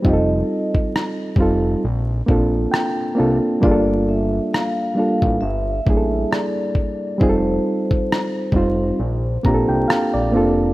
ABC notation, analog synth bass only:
X:1
M:4/4
L:1/16
Q:"Swing 16ths" 1/4=67
K:Gm
V:1 name="Analog synth bass" clef=bass
F,,,2 z4 F,,,2 B,,,2 B,,,2 z2 C,, z | G,,,4 z3 A,,, G,,,2 A,,,2 z4 | F,,,2 z4 F,,,2 B,,,2 B,,, C,, z B,,, F,,,2 |]